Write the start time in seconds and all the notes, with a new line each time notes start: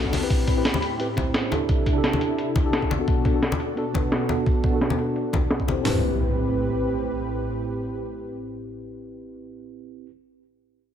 Already playing: B1 B3 D4 F#4 A4
0.05 kick
0.13 snare, closed hi-hat, open hi-hat, high conga
0.21 C4 E4 G4 B4, ride
0.30 A2 C4 G4 B5, kick, closed hi-hat
0.48 kick, closed hi-hat
0.56 C4 E4 G4 B4
0.65 snare, closed hi-hat
0.74 high conga
0.82 closed hi-hat
0.98 C4 E4 G4 B4, closed hi-hat
1.16 C4 E4 G4 C5, kick, closed hi-hat, high conga
1.34 snare, closed hi-hat
1.49 C3 D4 E4 G4 A4, closed hi-hat, high conga
1.54 A4
1.69 kick, closed hi-hat
1.86 kick, closed hi-hat
1.93 D4 E4 G4
1.98 A4
2.04 snare, closed hi-hat
2.13 high conga
2.21 closed hi-hat
2.38 closed hi-hat
2.56 kick, closed hi-hat, high conga
2.64 D4 E4 G4 A4
2.73 snare, closed hi-hat
2.82 kick
2.90 B2 F#4, closed hi-hat, high conga
2.98 B3 D4 F#4 A4
3.08 kick, closed hi-hat
3.25 kick, closed hi-hat
3.33 B3 D4 F#4 A4
3.43 snare, closed hi-hat
3.52 high conga
3.60 closed hi-hat
3.76 B3 D4 F#4 A4, closed hi-hat
3.93 B3 D4 F#4 B4, kick, closed hi-hat, high conga
4.12 snare, closed hi-hat
4.27 B3 D4 F#4, closed hi-hat, high conga
4.32 A4
4.46 kick, closed hi-hat
4.64 kick, closed hi-hat
4.71 B3 D4 F#4
4.75 A4
4.81 snare, closed hi-hat
4.90 high conga
4.99 closed hi-hat
5.16 closed hi-hat
5.33 kick, closed hi-hat, high conga
5.50 snare, closed hi-hat
5.60 kick
5.67 C4 E4 G4 C5, closed hi-hat, high conga
5.81 A2 C4 E4 G4 B4, snare, floor tom, open hi-hat, impact
5.85 C4 G4 B4